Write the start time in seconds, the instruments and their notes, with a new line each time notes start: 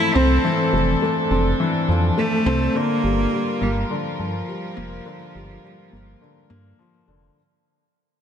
Already playing: felt piano E3 F3 A3 C4, cello E4, string section E4 A4
0.15 detuned saw bass C2, felt piano C4, cello C4
0.44 felt piano E3, string section D4
0.73 detuned saw bass F1, felt piano A3
1.02 felt piano A3
1.31 detuned saw bass F1, felt piano C4
1.60 felt piano E3
1.89 detuned saw bass F2, felt piano F3
2.18 felt piano A3, cello A3
2.46 detuned saw bass C2, felt piano C4
2.75 felt piano D3, string section G3 F4 A#4, cello A#3
3.04 detuned saw bass G1, felt piano G3
3.33 felt piano G3
3.61 detuned saw bass G1, cello G3, felt piano A#3
3.91 felt piano D3, cello F3
4.19 detuned saw bass G2, felt piano F3
4.48 felt piano G3
4.77 detuned saw bass F1, felt piano A#3
5.06 felt piano D3
5.35 detuned saw bass G1, felt piano G3
5.64 felt piano G3
5.92 detuned saw bass G1, felt piano A#3
6.21 felt piano D3
6.50 detuned saw bass G2, felt piano A#3
6.79 felt piano F3
7.08 detuned saw bass F1, felt piano D3